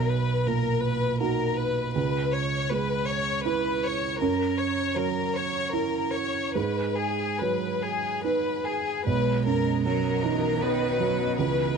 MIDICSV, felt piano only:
0, 0, Header, 1, 2, 480
1, 0, Start_track
1, 0, Tempo, 744417
1, 1258, Time_signature, 3, 2, 24, 8
1, 2225, Tempo, 761421
1, 3665, Tempo, 834492
1, 5585, Tempo, 769231
1, 7271, End_track
2, 0, Start_track
2, 0, Title_t, "Felt piano"
2, 0, Program_c, 0, 0
2, 0, Control_c, 0, 64, 127
2, 0, Note_on_c, 0, 35, 49
2, 298, Note_on_c, 0, 46, 35
2, 774, Note_on_c, 0, 63, 39
2, 777, Note_on_c, 0, 66, 41
2, 1063, Note_off_c, 0, 46, 0
2, 1232, Note_off_c, 0, 35, 0
2, 1232, Note_off_c, 0, 63, 0
2, 1233, Note_off_c, 0, 66, 0
2, 1259, Note_on_c, 0, 37, 48
2, 1271, Control_c, 0, 64, 0
2, 1385, Control_c, 0, 64, 127
2, 1744, Note_on_c, 0, 56, 39
2, 2227, Note_on_c, 0, 64, 38
2, 2229, Note_on_c, 0, 71, 43
2, 2512, Note_off_c, 0, 56, 0
2, 2677, Note_off_c, 0, 37, 0
2, 2677, Note_off_c, 0, 64, 0
2, 2678, Note_off_c, 0, 71, 0
2, 2704, Note_on_c, 0, 42, 49
2, 2714, Control_c, 0, 64, 0
2, 2812, Control_c, 0, 64, 127
2, 3174, Note_on_c, 0, 54, 37
2, 3662, Note_on_c, 0, 64, 36
2, 3663, Note_on_c, 0, 70, 34
2, 3943, Note_off_c, 0, 54, 0
2, 4112, Note_off_c, 0, 64, 0
2, 4112, Note_off_c, 0, 70, 0
2, 4115, Note_off_c, 0, 42, 0
2, 4136, Note_on_c, 0, 44, 41
2, 4147, Control_c, 0, 64, 0
2, 4256, Control_c, 0, 64, 127
2, 4630, Note_on_c, 0, 54, 31
2, 5108, Note_on_c, 0, 63, 32
2, 5111, Note_on_c, 0, 71, 31
2, 5399, Note_off_c, 0, 54, 0
2, 5562, Note_off_c, 0, 44, 0
2, 5562, Note_off_c, 0, 63, 0
2, 5563, Note_off_c, 0, 71, 0
2, 5581, Note_on_c, 0, 35, 48
2, 5598, Control_c, 0, 64, 0
2, 5710, Control_c, 0, 64, 127
2, 5828, Note_on_c, 0, 42, 42
2, 6074, Note_on_c, 0, 54, 35
2, 6215, Note_off_c, 0, 42, 0
2, 6318, Note_on_c, 0, 63, 40
2, 6456, Note_off_c, 0, 54, 0
2, 6550, Note_on_c, 0, 71, 45
2, 6696, Note_off_c, 0, 63, 0
2, 6789, Note_on_c, 0, 54, 38
2, 6931, Note_off_c, 0, 71, 0
2, 6999, Note_off_c, 0, 35, 0
2, 7026, Note_off_c, 0, 54, 0
2, 7028, Note_on_c, 0, 37, 47
2, 7037, Control_c, 0, 64, 0
2, 7133, Control_c, 0, 64, 127
2, 7271, Note_off_c, 0, 37, 0
2, 7271, End_track
0, 0, End_of_file